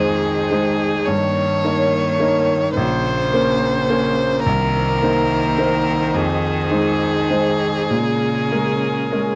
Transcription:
Already playing: grand piano F2 G#3 D#4 C5, cello D#3, string section G#3 D#4 C5, violin G#4
0.51 grand piano G#3 D#4 C5
1.06 grand piano G2, cello D#3, string section A#3 C#5, violin C#5
1.64 grand piano A#3 D#4 C#5
2.20 grand piano A#3 D#4 C#5
2.76 grand piano A#1, cello C#3, string section C#4 C5, violin C5
3.34 grand piano A#3 C#4 C5
3.90 grand piano A#3 C#4 C5
4.45 grand piano C2, cello D#3, string section D#4, violin A#4
5.02 grand piano A#3 D#4 C5
5.58 grand piano A#3 D#4 C5
6.14 grand piano F2, string section G#3, violin G#4
6.71 grand piano G#3 D#4 C5
7.30 grand piano G#3 D#4 C5
7.89 grand piano A#2, cello C#3, string section C#4 A#4
8.51 grand piano G#3 C#4 A#4
9.12 grand piano G#3 C#4 A#4

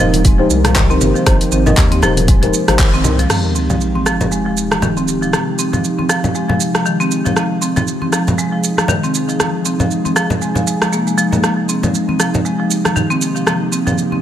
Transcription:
Already playing: ambient pad C3 G#3 A#3 D#4 G4
0.00 analog synth bass D#1, marimba F3, synth stab D#4 G4 A#4 C5, low conga
0.14 closed hi-hat, mid tom, shaker
0.25 marimba G#3, kick, closed hi-hat, shaker
0.39 marimba F3, synth stab D#4 G4 A#4 C5
0.50 analog synth bass C2, shaker
0.65 marimba F3, cross-stick, closed hi-hat, mid tom, high conga, shaker
0.76 marimba D#3, kick, clap, closed hi-hat, low conga, shaker
0.90 marimba C4, synth stab D#4 G4 A#4 C5, shaker
1.01 analog synth bass G#1, low conga, shaker
1.15 marimba F3, shaker
1.26 analog synth bass G#1, synth stab D#4 G4 A#4 C5, kick, cross-stick, closed hi-hat, high conga, shaker
1.41 closed hi-hat, shaker
1.52 analog synth bass G#1, marimba C4, shaker
1.66 marimba F3, synth stab D#4 G4 A#4 D#5, mid tom, high conga, low conga, shaker
1.77 analog synth bass D#2, kick, clap, closed hi-hat, shaker
1.92 marimba C4, closed hi-hat, high conga
2.02 analog synth bass D#1, marimba F3, synth stab D#4 G4 A#4 C5, cross-stick, low conga, shaker
2.17 closed hi-hat, mid tom, shaker
2.28 marimba G#3, kick, closed hi-hat, shaker
2.42 marimba F3, synth stab D#4 G4 A#4 C5, closed hi-hat, low conga, shaker
2.54 shaker
2.68 analog synth bass G#1, marimba F3, synth stab D#4 G4 A#4 C5, cross-stick, closed hi-hat, high conga, shaker
2.79 marimba D#3, kick, clap, closed hi-hat, shaker
2.94 marimba C4, shaker
3.04 analog synth bass C2, synth stab D#4 G4 A#4 C5, mid tom, low conga, shaker
3.19 marimba F3, closed hi-hat, shaker
3.30 ambient pad C3 F3 G#3 D#4 G4, marimba F3, cross-stick, crash, sub drop, shaker
3.55 marimba C4, shaker
3.70 marimba F3, high conga, low conga, shaker
3.81 shaker
3.95 marimba C4, high conga
4.06 marimba F3, cross-stick, shaker
4.21 low conga, shaker
4.32 marimba G#3, shaker
4.46 marimba F3
4.57 shaker
4.71 marimba F3, cross-stick, high conga, shaker
4.82 marimba D#3, low conga, shaker
4.97 marimba C4, shaker
5.08 shaker
5.22 marimba F3, shaker
5.33 marimba F3, cross-stick, high conga, shaker
5.59 marimba C4, shaker
5.73 marimba F3, high conga, low conga, shaker
5.84 shaker
5.99 marimba C4, high conga
6.09 marimba F3, cross-stick, shaker
6.24 low conga, shaker
6.35 marimba G#3, shaker
6.49 marimba F3, low conga
6.60 shaker
6.75 marimba F3, cross-stick, shaker
6.86 marimba D#3, shaker
7.00 marimba C4, shaker
7.11 shaker
7.26 marimba F3, low conga, shaker
7.36 marimba F3, ambient pad G#4, cross-stick, shaker
7.62 marimba C4, shaker
7.76 marimba F3, high conga, low conga, shaker
7.88 shaker
8.02 marimba C4, high conga
8.13 marimba F3, cross-stick, shaker
8.28 low conga, shaker
8.38 marimba G#3, shaker
8.53 marimba F3
8.64 shaker
8.78 marimba F3, cross-stick, high conga, shaker
8.88 marimba D#3, low conga, shaker
9.03 marimba C4, shaker
9.15 shaker
9.29 marimba F3, shaker
9.40 marimba F3, cross-stick, high conga, shaker
9.65 marimba C4, shaker
9.80 marimba F3, high conga, low conga, shaker
9.91 shaker
10.05 marimba C4, high conga, shaker
10.16 marimba F3, cross-stick, shaker
10.30 low conga, shaker
10.42 marimba G#3, shaker
10.55 marimba F3, low conga, shaker
10.67 marimba G#3, shaker
10.82 marimba F3, cross-stick, shaker
10.93 marimba A#3, shaker
11.07 marimba G#3, shaker
11.18 marimba F3, shaker
11.32 marimba A#3, low conga, shaker
11.43 marimba F3, ambient pad A#3 G4, cross-stick, shaker
11.69 marimba C4, shaker
11.83 marimba F3, high conga, low conga, shaker
11.95 shaker
12.09 marimba C4, high conga
12.20 marimba F3, cross-stick, shaker
12.35 low conga, shaker
12.45 marimba G#3, shaker
12.60 marimba F3
12.71 shaker
12.85 marimba F3, cross-stick, high conga, shaker
12.96 marimba D#3, low conga, shaker
13.10 marimba C4, shaker
13.22 shaker
13.36 marimba F3, shaker
13.47 marimba F3, cross-stick, high conga, shaker
13.72 marimba C4, shaker
13.87 marimba F3, high conga, low conga, shaker
13.98 shaker
14.12 marimba C4, high conga

